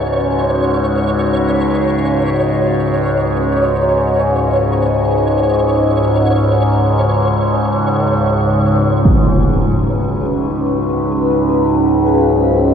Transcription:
Already playing: synth drone C#2 G#2, ambient pad C#4 F#4 B4 E5, synth texture C#5
1.32 ambient pad D#5
9.05 synth drone C#2 G#2, synth texture G#4, impact
11.49 ambient pad E5

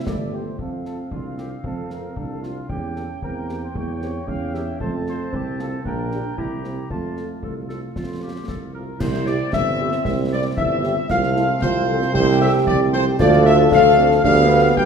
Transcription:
Already playing: trombone section G3 C4, woodwind section E4
0.07 tuba G1, euphonium A3, trumpet section D5, concert bass drum, snare
0.32 french horn section G3 C4 G4, trumpet section C5
0.59 tuba F2, woodwind section C4 F5, euphonium C4, trumpet section A4, concert bass drum
0.84 french horn section A3 C4 F4, trumpet section A4, snare
1.11 tuba C2, euphonium D4, trumpet section F4, concert bass drum
1.37 french horn section A3 C4 F4, trumpet section G4, snare
1.64 tuba F2, euphonium C4, trumpet section A4, concert bass drum
1.89 french horn section A3 C4 F4, trumpet section A#4, snare
2.16 tuba C2, euphonium D4, trumpet section A4, concert bass drum
2.42 french horn section A3 C4 F4, trumpet section F4, snare
2.69 tuba E2, woodwind section A#3 G5, euphonium C#4, trumpet section G4, concert bass drum
2.95 french horn section A#3 G4, trumpet section A4, snare
3.22 tuba E2, euphonium C4, trumpet section A#4, concert bass drum
3.48 french horn section A#3 G4, snare
3.63 trumpet section C5
3.75 tuba E2, euphonium A#3, trumpet section C#5, concert bass drum
4.00 french horn section A#3 G4, euphonium C4, snare
4.27 tuba E2, euphonium C#4, trumpet section F5, concert bass drum
4.53 french horn section A#3 G4, trumpet section E5, snare
4.80 tuba F2, euphonium A3, woodwind section C4 A5, trumpet section C5, concert bass drum
5.06 french horn section A3 C4 F4, trumpet section C5, snare
5.33 tuba C2, euphonium C4, trumpet section G4, concert bass drum
5.59 french horn section A3 C4 F4, trumpet section A4, snare
5.84 tuba A#1, euphonium A#3, woodwind section D4 G5, trumpet section A#4, concert bass drum
6.12 french horn section A#3 D4 G4, euphonium D4, snare
6.37 tuba C2, woodwind section E4 A#5, euphonium E4, trumpet section G4, concert bass drum
6.64 french horn section A#3 C4 E4, euphonium C4, snare
6.90 tuba F2, euphonium A3, woodwind section F4 A5, trumpet section F4, concert bass drum
7.16 french horn section A3 C4 F4, snare
7.43 tuba C2, woodwind section A4, concert bass drum
7.68 french horn section A3 C4 F4, woodwind section A4, snare
7.95 tuba F2, woodwind section F4, concert bass drum, snare
8.21 french horn section A3 C4 F4, woodwind section G4
8.48 tuba C2, woodwind section A4, concert bass drum, snare
8.74 french horn section A3 C4 F4, woodwind section A#4, trumpet section A#4
8.99 tuba C2, trombone section G3 C4, euphonium E4, trumpet section C5, woodwind section C5, concert bass drum, snare, crash
9.14 snare
9.27 french horn section G3 C4 G4, trumpet section D5, woodwind section D5, snare
9.52 tuba G1, euphonium D4, trumpet section E5, woodwind section E5, concert bass drum, snare
9.80 french horn section G3 C4 G4, euphonium C4
9.92 snare
10.04 tuba C2, woodwind section E5, trumpet section E5, concert bass drum, snare
10.30 french horn section G3 C4 G4, woodwind section D5, trumpet section D5
10.57 tuba G1, euphonium E4, woodwind section E5, trumpet section E5, concert bass drum
10.83 french horn section G3 C4 G4, euphonium G4, snare
11.08 tuba C2, trombone section A3 C4, euphonium F4, trumpet section F5, woodwind section F5, concert bass drum, snare, crash
11.23 snare
11.35 french horn section F3 C4 A4, euphonium E4, snare
11.62 tuba C2, euphonium F4, woodwind section C5, trumpet section C5, concert bass drum, snare
11.88 french horn section F3 C4 A4
12.02 snare
12.14 tuba C2, euphonium G4, trumpet section C5, woodwind section C5, concert bass drum, snare
12.40 french horn section F3 C4 A4, trumpet section E5, woodwind section E5
12.66 tuba C2, trumpet section D5, woodwind section D5, concert bass drum
12.93 french horn section F3 C4 A4, trumpet section C5, woodwind section C5, snare
13.18 tuba D2, french horn section F3 A3 A4, trombone section A3 D4, euphonium F4, trumpet section D5, woodwind section D5, concert bass drum, snare, crash
13.32 snare
13.45 trumpet section E5, woodwind section E5, snare
13.71 tuba D2, french horn section F3 A3 A4, euphonium D4, trumpet section F5, woodwind section F5, concert bass drum, snare
13.97 euphonium C4
14.11 snare
14.23 tuba D2, trombone section G3 B3, french horn section G3 B3 G4, euphonium D4, woodwind section F5, trumpet section F5, concert bass drum, snare
14.48 euphonium B3
14.76 tuba D2, french horn section G3 B3 G4, trumpet section G5, woodwind section G5, concert bass drum

